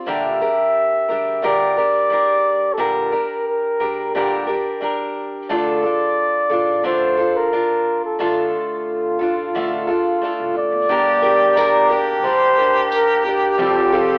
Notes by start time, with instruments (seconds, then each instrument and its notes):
0.06 upright bass A#1, steel-string acoustic guitar A#2 D3 G3 D4 G4 A#4, flugelhorn E5
0.41 steel-string acoustic guitar G3 D4 G4 A#4
1.09 upright bass D2, steel-string acoustic guitar G3 D4 G4 A#4
1.42 upright bass D2, steel-string acoustic guitar A#2 D3 G3 D4 G4 A#4, flugelhorn D5
1.77 steel-string acoustic guitar G3 D4 G4 A#4
2.10 steel-string acoustic guitar G3 D4 G4 A#4
2.73 flugelhorn A4
2.77 upright bass A#1, steel-string acoustic guitar A#2 D3 G3 D4 G4 A#4, flugelhorn A#4
3.12 steel-string acoustic guitar G3 D4 G4 A#4
3.48 flugelhorn A#4
3.80 upright bass D2, steel-string acoustic guitar G3 D4 G4 A#4
4.15 upright bass D2, steel-string acoustic guitar A#2 D3 G3 D4 G4 A#4, flugelhorn G4
4.47 steel-string acoustic guitar G3 D4 G4 A#4
4.81 steel-string acoustic guitar G3 D4 G4 A#4
5.49 upright bass D2, steel-string acoustic guitar D3 A3 D4 F4 A4, flugelhorn D5
5.83 steel-string acoustic guitar D4 F4 A4
6.49 upright bass A1, steel-string acoustic guitar D4 F4 A4
6.83 upright bass A1, steel-string acoustic guitar D3 A3 D4 F4 A4, flugelhorn C5
7.17 steel-string acoustic guitar D4 F4 A4
7.37 flugelhorn A#4
7.53 steel-string acoustic guitar D4 F4
8.05 flugelhorn A4
8.19 upright bass D2, steel-string acoustic guitar D3 A3 D4 F4 A4, flugelhorn F4
9.19 upright bass A1, steel-string acoustic guitar D4 F4 A4
9.55 upright bass A1, steel-string acoustic guitar D3 A3 D4 F4 A4
9.87 steel-string acoustic guitar D4 F4 A4
10.22 steel-string acoustic guitar A3 D4 F4 A4
10.40 upright bass C2
10.56 upright bass A1, flugelhorn D5
10.72 upright bass G1
10.89 upright bass G1, steel-string acoustic guitar G3 D4 G4 A#4, harmonium A#3 D4 G4, harmonica G4
11.22 steel-string acoustic guitar G3 D4 G4 A#4
11.56 steel-string acoustic guitar G3 D4 G4 A#4, harmonica A#4, tambourine
11.90 steel-string acoustic guitar D4 G4 A#4, harmonica G4
12.24 upright bass D2, steel-string acoustic guitar G3 D4 G4 A#4, flugelhorn C5
12.58 steel-string acoustic guitar D4 G4 A#4
12.92 flugelhorn A#4, tambourine
13.25 steel-string acoustic guitar D4 G4 A#4, flugelhorn G4
13.58 upright bass F1, steel-string acoustic guitar F3 G3 C4 F4 A4, harmonium F3 C4 A4, harmonica G4
13.92 steel-string acoustic guitar F3 G3 C4 F4 A4